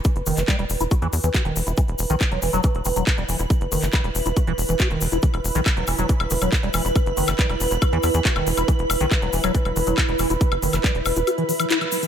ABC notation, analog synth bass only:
X:1
M:4/4
L:1/16
Q:1/4=139
K:Clyd
V:1 name="Analog synth bass" clef=bass
z F,,, F,,, F,,, z E,,, E,,, E,,, z E,, E,, E,, z E,,, E,,, E,,, | z E,,, E,,, B,,, z E,,, E,,, E,,, z E,,, E,,, E,,, z E,,, E,,, E,,, | z F,,, F,,, F,,, z E,,, E,,, E,,, z E,,, E,,, E,,, z E,,, E,,, E,,, | z E,,, E,,, B,,, z E,,, E,,, E,,, z E,,, E,,, E,,, z E,,, E,,, E,,, |
z F,,, F,,, F,,, z E,,, E,,, E,,, z E,, E,, E,, z E,,, E,,, E,,, | z E,,, E,,, B,,, z E,,, E,,, E,,, z E,,, E,,, E,,, z E,,, E,,, E,,, | z F,,, F,,, F,,, z E,,, E,,, E,,, z8 |]